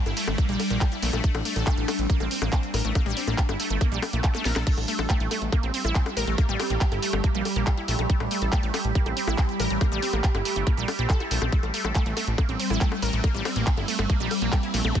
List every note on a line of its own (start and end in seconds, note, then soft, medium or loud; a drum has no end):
0.00 4.66 G3 medium
0.00 4.69 D4 medium
0.06 0.14 G1 medium
0.06 0.10 E4 medium
0.06 closed hi-hat medium
0.06 high bongo soft
0.17 0.23 A3 medium
0.17 open hi-hat loud
0.28 0.35 G1 medium
0.28 0.38 A3 medium
0.28 high bongo medium
0.38 0.45 A#3 medium
0.38 kick loud
0.38 closed hi-hat medium
0.49 0.57 A#1 medium
0.49 0.56 G3 loud
0.49 closed hi-hat medium
0.60 open hi-hat loud
0.60 high bongo soft
0.70 0.78 A#1 medium
0.70 0.80 A#3 medium
0.70 closed hi-hat medium
0.81 0.85 G3 medium
0.81 kick loud
0.81 clap loud
0.81 closed hi-hat medium
0.81 high bongo medium
0.92 0.96 E4 medium
0.92 closed hi-hat medium
1.02 1.10 A#1 medium
1.02 1.09 A3 medium
1.02 open hi-hat loud
1.13 1.21 A#1 medium
1.13 1.23 A3 medium
1.13 closed hi-hat medium
1.13 high bongo soft
1.24 1.31 A3 medium
1.24 kick loud
1.24 closed hi-hat loud
1.35 1.42 A1 medium
1.35 closed hi-hat medium
1.35 high bongo medium
1.45 1.52 A3 medium
1.45 open hi-hat loud
1.56 1.64 A1 medium
1.56 1.66 A4 medium
1.56 closed hi-hat medium
1.67 1.73 A3 loud
1.67 kick loud
1.67 clap loud
1.67 closed hi-hat loud
1.67 high bongo soft
1.77 1.85 A1 medium
1.77 1.84 A3 medium
1.77 closed hi-hat medium
1.88 1.95 A3 medium
1.88 open hi-hat loud
1.88 high bongo medium
1.99 2.07 A1 medium
1.99 closed hi-hat medium
2.10 2.16 A#3 medium
2.10 kick loud
2.10 closed hi-hat loud
2.20 2.28 A1 medium
2.20 2.27 C4 medium
2.20 closed hi-hat medium
2.20 high bongo soft
2.31 2.35 C4 medium
2.31 open hi-hat loud
2.42 2.49 A1 medium
2.42 2.48 A#3 medium
2.42 high bongo medium
2.52 2.62 C4 medium
2.52 kick loud
2.52 clap loud
2.52 closed hi-hat medium
2.63 closed hi-hat medium
2.74 2.82 A1 loud
2.74 2.78 A#4 loud
2.74 open hi-hat loud
2.74 high bongo soft
2.85 2.92 A1 medium
2.85 2.95 A3 medium
2.85 closed hi-hat medium
2.95 3.02 A#3 medium
2.95 kick loud
2.95 closed hi-hat loud
2.95 high bongo medium
3.06 3.14 A1 medium
3.06 3.13 G3 loud
3.06 closed hi-hat medium
3.17 3.21 C4 medium
3.17 open hi-hat loud
3.27 3.35 A1 medium
3.27 3.34 A#3 medium
3.27 closed hi-hat medium
3.27 high bongo soft
3.38 kick loud
3.38 clap loud
3.38 closed hi-hat loud
3.49 3.57 G1 medium
3.49 3.53 E4 medium
3.49 closed hi-hat medium
3.49 high bongo medium
3.60 3.66 A3 medium
3.60 open hi-hat loud
3.70 3.78 G1 medium
3.70 3.80 A3 medium
3.70 closed hi-hat medium
3.81 3.88 A#3 medium
3.81 kick loud
3.81 closed hi-hat loud
3.81 high bongo soft
3.92 3.99 A#1 medium
3.92 3.98 G3 loud
3.92 closed hi-hat medium
4.02 open hi-hat loud
4.02 high bongo medium
4.13 4.21 A#1 medium
4.13 4.20 A3 medium
4.13 closed hi-hat medium
4.24 4.31 A3 medium
4.24 kick loud
4.24 clap loud
4.24 closed hi-hat loud
4.35 4.41 A3 loud
4.35 snare medium
4.35 closed hi-hat medium
4.35 high bongo soft
4.45 4.53 A#1 loud
4.45 4.55 A#4 medium
4.45 snare medium
4.45 open hi-hat loud
4.56 4.64 A#1 medium
4.56 4.63 A4 medium
4.56 snare medium
4.56 closed hi-hat medium
4.56 high bongo medium
4.67 15.00 G3 medium
4.67 4.73 A3 medium
4.67 11.55 G4 medium
4.67 kick loud
4.67 closed hi-hat loud
4.67 crash medium
4.77 4.85 A1 medium
4.77 closed hi-hat medium
4.77 high bongo soft
4.88 4.95 A3 medium
4.88 open hi-hat loud
4.99 5.07 A1 medium
4.99 5.09 A4 medium
4.99 closed hi-hat medium
4.99 high bongo medium
5.10 5.16 A3 loud
5.10 kick loud
5.10 clap loud
5.10 closed hi-hat loud
5.20 5.28 A1 medium
5.20 5.27 A3 medium
5.20 closed hi-hat medium
5.31 5.38 A3 medium
5.31 open hi-hat loud
5.31 high bongo soft
5.42 5.49 A1 medium
5.42 closed hi-hat medium
5.52 5.59 A#3 medium
5.52 kick loud
5.52 closed hi-hat loud
5.52 high bongo medium
5.63 5.71 A1 medium
5.63 5.70 C4 medium
5.63 closed hi-hat medium
5.74 5.78 C4 medium
5.74 open hi-hat loud
5.85 5.92 A1 medium
5.85 5.91 E4 loud
5.85 closed hi-hat medium
5.85 high bongo soft
5.95 6.05 C4 medium
5.95 kick loud
5.95 clap loud
5.95 closed hi-hat loud
6.06 closed hi-hat medium
6.06 high bongo medium
6.17 6.24 A1 medium
6.17 6.21 A#4 loud
6.17 open hi-hat loud
6.27 6.35 A1 medium
6.27 6.37 A3 medium
6.27 closed hi-hat medium
6.38 6.45 A#3 medium
6.38 kick loud
6.38 closed hi-hat loud
6.38 high bongo soft
6.49 6.57 A1 medium
6.49 6.56 G3 loud
6.49 closed hi-hat medium
6.60 6.64 C4 medium
6.60 open hi-hat loud
6.60 high bongo medium
6.70 6.78 A1 medium
6.70 6.77 A#3 medium
6.70 closed hi-hat medium
6.81 kick loud
6.81 clap loud
6.81 closed hi-hat loud
6.92 6.99 G1 medium
6.92 6.96 E4 medium
6.92 closed hi-hat medium
6.92 high bongo soft
7.02 7.09 A3 medium
7.02 open hi-hat loud
7.13 7.21 G1 medium
7.13 7.23 A3 medium
7.13 high bongo medium
7.24 7.31 A#3 medium
7.24 kick loud
7.24 closed hi-hat medium
7.35 7.42 A#1 medium
7.35 7.41 G3 loud
7.35 closed hi-hat medium
7.45 open hi-hat loud
7.45 high bongo soft
7.56 7.64 A#1 medium
7.56 7.66 A#3 medium
7.56 closed hi-hat medium
7.67 7.71 G3 medium
7.67 kick loud
7.67 clap loud
7.67 closed hi-hat loud
7.67 high bongo medium
7.77 7.81 E4 medium
7.77 closed hi-hat medium
7.88 7.96 A#1 medium
7.88 7.95 A3 medium
7.88 open hi-hat loud
7.99 8.07 A#1 medium
7.99 8.08 A3 medium
7.99 closed hi-hat medium
7.99 high bongo soft
8.10 8.16 A3 medium
8.10 kick loud
8.10 closed hi-hat medium
8.20 8.28 A1 medium
8.20 closed hi-hat medium
8.20 high bongo medium
8.31 8.38 A3 medium
8.31 open hi-hat loud
8.42 8.49 A1 medium
8.42 8.52 A4 medium
8.42 closed hi-hat medium
8.52 8.59 A3 loud
8.52 kick loud
8.52 clap loud
8.52 closed hi-hat loud
8.52 high bongo soft
8.63 8.71 A1 medium
8.63 8.70 A3 medium
8.63 closed hi-hat medium
8.74 8.81 A3 medium
8.74 open hi-hat loud
8.74 high bongo medium
8.85 8.92 A1 medium
8.85 closed hi-hat medium
8.95 9.02 A#3 medium
8.95 kick loud
8.95 closed hi-hat medium
9.06 9.14 A1 medium
9.06 9.13 C4 medium
9.06 closed hi-hat medium
9.06 high bongo soft
9.17 9.21 C4 medium
9.17 open hi-hat loud
9.27 9.35 A1 medium
9.27 9.34 E4 loud
9.27 closed hi-hat medium
9.27 high bongo medium
9.38 9.48 C4 medium
9.38 kick loud
9.38 clap loud
9.38 closed hi-hat medium
9.49 closed hi-hat soft
9.60 9.67 A1 loud
9.60 9.64 A#4 loud
9.60 open hi-hat loud
9.60 high bongo soft
9.70 9.78 A1 medium
9.70 9.80 A3 medium
9.70 closed hi-hat medium
9.81 9.88 A#3 medium
9.81 kick loud
9.81 closed hi-hat medium
9.81 high bongo medium
9.92 9.99 A1 medium
9.92 9.98 G3 loud
9.92 closed hi-hat medium
10.02 10.06 C4 medium
10.02 open hi-hat loud
10.13 10.21 A1 medium
10.13 10.20 A#3 medium
10.13 closed hi-hat medium
10.13 high bongo soft
10.24 kick loud
10.24 clap loud
10.24 closed hi-hat medium
10.35 10.42 G1 medium
10.35 10.39 E4 medium
10.35 closed hi-hat medium
10.35 high bongo medium
10.45 10.52 A3 medium
10.45 open hi-hat loud
10.56 10.64 G1 medium
10.56 10.66 A3 medium
10.56 closed hi-hat medium
10.67 10.73 A#3 medium
10.67 kick loud
10.67 closed hi-hat medium
10.67 high bongo soft
10.77 10.85 A#1 medium
10.77 10.84 G3 loud
10.77 closed hi-hat soft
10.88 open hi-hat loud
10.88 high bongo medium
10.99 11.07 A#1 medium
10.99 11.09 C4 medium
10.99 closed hi-hat soft
11.10 11.20 A4 loud
11.10 kick loud
11.10 clap loud
11.10 closed hi-hat medium
11.20 11.24 E4 medium
11.20 closed hi-hat soft
11.20 high bongo soft
11.31 11.39 A#1 loud
11.31 11.38 A3 medium
11.31 open hi-hat loud
11.42 11.49 A#1 medium
11.42 11.52 C4 medium
11.42 high bongo medium
11.52 11.59 A3 medium
11.52 15.00 C4 medium
11.52 kick loud
11.52 closed hi-hat medium
11.63 11.71 A1 medium
11.63 closed hi-hat medium
11.63 high bongo soft
11.74 11.81 A3 medium
11.74 open hi-hat loud
11.85 11.92 A1 medium
11.85 11.95 A4 medium
11.85 high bongo medium
11.95 12.02 A3 loud
11.95 kick loud
11.95 clap loud
11.95 closed hi-hat loud
12.06 12.14 A1 medium
12.06 12.13 A3 medium
12.06 closed hi-hat medium
12.17 12.23 A3 medium
12.17 open hi-hat loud
12.17 high bongo soft
12.27 12.35 A1 medium
12.27 closed hi-hat medium
12.38 12.45 A#3 medium
12.38 kick loud
12.38 closed hi-hat medium
12.38 high bongo medium
12.49 12.57 A1 medium
12.49 12.56 C4 medium
12.49 closed hi-hat soft
12.60 12.64 C4 medium
12.60 open hi-hat loud
12.70 12.78 A1 medium
12.70 12.77 E4 loud
12.70 closed hi-hat medium
12.70 high bongo soft
12.81 12.88 A3 loud
12.81 kick loud
12.81 clap loud
12.81 closed hi-hat medium
12.92 closed hi-hat medium
12.92 high bongo medium
13.02 13.10 A1 medium
13.02 13.06 A#4 loud
13.02 open hi-hat loud
13.13 13.21 A1 medium
13.13 13.23 A3 medium
13.13 closed hi-hat soft
13.24 13.31 A#3 medium
13.24 kick loud
13.24 closed hi-hat loud
13.24 high bongo soft
13.35 13.42 A1 medium
13.35 13.41 G3 loud
13.35 closed hi-hat medium
13.45 13.49 C4 medium
13.45 open hi-hat loud
13.45 high bongo medium
13.56 13.64 A1 medium
13.56 13.63 A#3 medium
13.56 closed hi-hat medium
13.67 kick loud
13.67 clap loud
13.67 closed hi-hat loud
13.77 13.85 G1 medium
13.77 13.81 E4 medium
13.77 closed hi-hat medium
13.77 high bongo soft
13.88 13.95 A3 medium
13.88 open hi-hat loud
13.99 14.07 G1 medium
13.99 14.09 A3 medium
13.99 high bongo medium
14.10 14.16 A#3 medium
14.10 kick loud
14.10 closed hi-hat medium
14.20 14.28 A#1 medium
14.20 14.27 G3 loud
14.20 closed hi-hat soft
14.31 open hi-hat loud
14.31 high bongo soft
14.42 14.49 A#1 medium
14.42 14.52 A#3 medium
14.42 closed hi-hat medium
14.52 14.56 G3 medium
14.52 kick loud
14.52 clap loud
14.52 closed hi-hat medium
14.52 high bongo medium
14.63 14.67 E4 medium
14.63 closed hi-hat medium
14.74 14.82 A#1 loud
14.74 14.81 A3 medium
14.74 open hi-hat loud
14.85 14.92 A#1 medium
14.85 14.94 A3 medium
14.85 zap medium
14.85 high bongo soft
14.95 15.00 A3 medium
14.95 kick loud
14.95 closed hi-hat loud